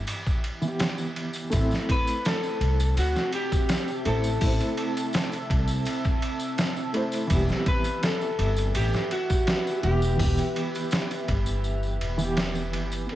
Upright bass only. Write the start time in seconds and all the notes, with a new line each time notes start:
1.52 A1
2.60 C2
2.97 D2
4.05 A1
4.42 A1
5.50 C2
7.30 E1
8.39 G1
8.75 A1
9.83 E1
10.20 E1
11.28 G1
12.01 E1
12.73 G1